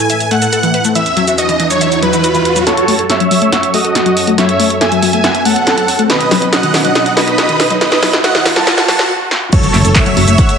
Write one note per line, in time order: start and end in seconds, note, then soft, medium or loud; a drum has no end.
0.00 0.94 A2 medium
0.00 0.94 A3 medium
0.00 0.94 E4 medium
0.00 2.63 B4 medium
0.00 0.27 G#5 medium
0.00 riser medium
0.10 0.16 E5 loud
0.10 closed hi-hat medium
0.10 shaker soft
0.20 closed hi-hat medium
0.20 shaker soft
0.31 0.35 A3 loud
0.31 0.87 F#5 medium
0.31 closed hi-hat medium
0.42 0.48 A4 medium
0.42 closed hi-hat medium
0.42 shaker medium
0.53 0.59 A4 loud
0.53 closed hi-hat medium
0.53 shaker medium
0.63 0.73 E3 medium
0.63 closed hi-hat medium
0.63 shaker soft
0.74 0.80 B4 medium
0.74 closed hi-hat medium
0.85 0.91 A3 medium
0.85 closed hi-hat medium
0.85 shaker medium
0.95 2.65 E2 medium
0.95 1.05 E3 medium
0.95 2.65 E3 medium
0.95 2.65 F#4 medium
0.95 1.33 E5 loud
0.95 closed hi-hat medium
0.95 shaker soft
1.06 closed hi-hat medium
1.06 shaker soft
1.17 1.21 F#3 loud
1.17 closed hi-hat medium
1.28 1.34 F#4 medium
1.28 closed hi-hat medium
1.28 shaker medium
1.38 1.45 F#4 loud
1.38 1.67 D#5 medium
1.38 closed hi-hat medium
1.38 shaker medium
1.49 1.58 E3 medium
1.49 closed hi-hat medium
1.49 shaker soft
1.60 1.66 E3 loud
1.60 closed hi-hat medium
1.70 1.77 F#3 medium
1.70 1.99 C#5 medium
1.70 closed hi-hat medium
1.70 shaker medium
1.81 1.88 E5 loud
1.81 closed hi-hat medium
1.81 shaker soft
1.92 closed hi-hat medium
1.92 shaker soft
2.03 2.06 F#3 loud
2.03 2.58 B4 medium
2.03 closed hi-hat medium
2.13 2.20 F#4 medium
2.13 closed hi-hat medium
2.13 shaker medium
2.24 2.30 F#4 loud
2.24 closed hi-hat medium
2.24 shaker soft
2.35 2.44 E3 medium
2.35 closed hi-hat medium
2.35 shaker soft
2.45 2.52 B4 medium
2.45 closed hi-hat medium
2.56 2.62 F#3 medium
2.56 closed hi-hat medium
2.56 shaker medium
2.67 6.06 F#2 medium
2.67 2.76 F#3 medium
2.67 9.06 F#3 medium
2.67 6.06 C#4 medium
2.67 3.05 A4 medium
2.67 6.06 A4 medium
2.67 3.05 C#5 loud
2.67 snare soft
2.67 closed hi-hat medium
2.67 riser medium
2.77 closed hi-hat medium
2.88 2.92 A3 loud
2.88 open hi-hat loud
2.99 3.05 A4 medium
2.99 closed hi-hat medium
3.10 3.16 A4 loud
3.10 3.38 C#5 medium
3.10 3.38 E5 medium
3.10 snare soft
3.10 closed hi-hat medium
3.20 3.30 F#3 medium
3.20 closed hi-hat medium
3.31 3.37 F#3 loud
3.31 open hi-hat loud
3.42 3.48 A3 medium
3.42 3.70 C#5 medium
3.42 3.70 E5 medium
3.42 closed hi-hat medium
3.52 3.59 F#5 loud
3.52 snare soft
3.52 closed hi-hat medium
3.63 closed hi-hat medium
3.74 3.78 A3 loud
3.74 4.30 F#4 medium
3.74 4.30 D#5 medium
3.74 open hi-hat loud
3.84 3.91 A4 medium
3.84 closed hi-hat medium
3.95 4.02 A4 loud
3.95 snare medium
3.95 closed hi-hat medium
4.06 4.15 F#3 medium
4.06 closed hi-hat medium
4.17 4.23 C#5 medium
4.17 open hi-hat loud
4.27 4.34 A3 medium
4.27 closed hi-hat medium
4.38 4.48 F#3 medium
4.38 4.76 C#5 medium
4.38 4.76 E5 loud
4.38 snare medium
4.38 closed hi-hat medium
4.49 closed hi-hat medium
4.60 4.63 A3 loud
4.60 open hi-hat loud
4.70 4.77 A4 medium
4.70 closed hi-hat medium
4.81 4.87 A4 loud
4.81 5.10 E5 medium
4.81 5.10 G#5 medium
4.81 snare medium
4.81 closed hi-hat medium
4.92 5.01 F#3 medium
4.92 closed hi-hat medium
5.02 5.09 F#3 loud
5.02 open hi-hat loud
5.13 5.20 A3 medium
5.13 5.42 E5 medium
5.13 5.42 G#5 medium
5.13 closed hi-hat medium
5.24 5.30 F#5 loud
5.24 snare medium
5.24 closed hi-hat medium
5.35 closed hi-hat medium
5.45 5.49 A3 loud
5.45 6.01 A4 medium
5.45 6.01 F#5 medium
5.45 open hi-hat loud
5.56 5.62 A4 medium
5.56 closed hi-hat medium
5.67 5.73 A4 loud
5.67 snare medium
5.67 closed hi-hat medium
5.78 5.87 F#3 medium
5.78 closed hi-hat medium
5.88 5.95 C#5 medium
5.88 open hi-hat loud
5.99 6.05 A3 medium
5.99 closed hi-hat medium
6.10 9.07 B2 medium
6.10 6.19 D#3 medium
6.10 9.07 D#4 medium
6.10 6.48 B4 medium
6.10 9.07 B4 medium
6.10 6.48 D#5 loud
6.10 snare medium
6.10 closed hi-hat medium
6.21 closed hi-hat medium
6.31 6.35 F#3 loud
6.31 snare medium
6.31 open hi-hat loud
6.42 6.48 F#4 medium
6.42 closed hi-hat medium
6.52 6.59 F#4 loud
6.52 6.81 D#5 medium
6.52 6.81 F#5 loud
6.52 snare medium
6.52 closed hi-hat medium
6.63 6.73 D#3 medium
6.63 closed hi-hat medium
6.74 6.80 D#3 loud
6.74 snare medium
6.74 open hi-hat loud
6.85 6.91 F#3 medium
6.85 7.13 D#5 medium
6.85 7.13 F#5 medium
6.85 closed hi-hat medium
6.95 7.02 D#5 loud
6.95 snare medium
6.95 closed hi-hat medium
7.06 closed hi-hat medium
7.17 7.21 F#3 loud
7.17 7.73 B4 medium
7.17 7.72 D#5 loud
7.17 snare medium
7.17 open hi-hat loud
7.28 7.34 F#4 medium
7.28 closed hi-hat medium
7.38 7.45 F#4 loud
7.38 snare medium
7.38 closed hi-hat medium
7.49 7.58 D#3 medium
7.49 closed hi-hat medium
7.60 7.66 B4 medium
7.60 snare medium
7.60 open hi-hat loud
7.70 7.77 F#3 medium
7.70 closed hi-hat medium
7.81 7.91 D#3 medium
7.81 8.19 B4 medium
7.81 8.19 D#5 loud
7.81 snare medium
7.81 closed hi-hat medium
7.92 snare medium
7.92 closed hi-hat soft
8.03 8.06 F#3 loud
8.03 snare loud
8.03 open hi-hat loud
8.13 8.20 F#4 medium
8.13 snare medium
8.13 closed hi-hat soft
8.24 8.30 F#4 loud
8.24 8.52 D#5 medium
8.24 8.52 F#5 loud
8.24 snare loud
8.24 closed hi-hat medium
8.35 8.44 D#3 medium
8.35 snare medium
8.35 closed hi-hat soft
8.45 8.52 D#3 loud
8.45 snare loud
8.45 open hi-hat loud
8.56 8.62 F#3 medium
8.56 8.85 F#5 medium
8.56 8.85 A5 medium
8.56 snare medium
8.56 closed hi-hat medium
8.67 8.73 D#5 loud
8.67 snare loud
8.67 closed hi-hat medium
8.78 snare medium
8.78 closed hi-hat medium
8.88 8.92 F#3 loud
8.88 9.10 F#5 medium
8.88 9.10 A5 loud
8.88 snare loud
8.88 open hi-hat loud
8.99 9.05 F#4 medium
8.99 snare medium
8.99 closed hi-hat medium
9.31 snare medium
9.53 9.62 F#3 medium
9.53 10.58 F#3 medium
9.53 10.58 F#4 medium
9.53 9.91 A4 medium
9.53 10.58 A4 medium
9.53 9.91 C#5 loud
9.53 10.58 C#5 medium
9.53 kick loud
9.53 closed hi-hat loud
9.53 crash loud
9.53 impact medium
9.53 shaker soft
9.63 closed hi-hat medium
9.63 shaker soft
9.74 9.83 F#1 medium
9.74 9.78 A3 loud
9.74 clap soft
9.74 open hi-hat loud
9.85 9.94 F#1 medium
9.85 9.91 A4 medium
9.85 closed hi-hat medium
9.85 shaker medium
9.95 10.02 A4 loud
9.95 10.24 C#5 medium
9.95 10.24 E5 medium
9.95 kick loud
9.95 clap loud
9.95 closed hi-hat loud
9.95 shaker medium
10.06 10.16 F#3 medium
10.06 closed hi-hat medium
10.06 shaker soft
10.17 10.26 F#1 loud
10.17 10.23 F#3 loud
10.17 open hi-hat loud
10.28 10.37 F#1 medium
10.28 10.34 A3 medium
10.28 10.56 C#5 medium
10.28 10.56 E5 medium
10.28 closed hi-hat medium
10.28 shaker medium
10.38 10.45 F#5 loud
10.38 kick loud
10.38 closed hi-hat loud
10.38 shaker soft
10.49 closed hi-hat medium
10.49 shaker soft